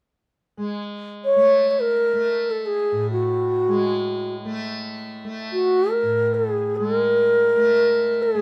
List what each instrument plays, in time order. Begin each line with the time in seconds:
0.57 tanpura G#3
1.25 bansuri C#5
1.36 tanpura A3
1.71 bansuri C#5
1.80 bansuri A#4
2.13 tanpura A3
2.51 bansuri A4
2.66 bansuri G#4
2.92 tanpura A2
3.12 bansuri F#4
3.68 tanpura G#3
4.45 tanpura A3
5.24 tanpura A3
5.52 bansuri F#4
5.91 bansuri A#4
6.03 tanpura A2
6.34 bansuri G#4
6.76 tanpura G#3, bansuri A4
6.96 bansuri A#4
7.56 tanpura A3
8.22 bansuri G#4
8.35 tanpura A3